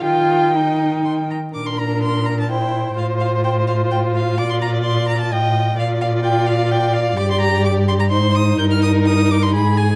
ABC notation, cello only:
X:1
M:3/4
L:1/8
Q:1/4=127
K:Eb
V:1 name="Cello" clef=bass
E,4- E, z | [K:Bb] B,,6 | A,,6 | B,,4 A,,2 |
B,,6 | [K:Eb] G,,4 A,,2 | G,,4 A,,2 |]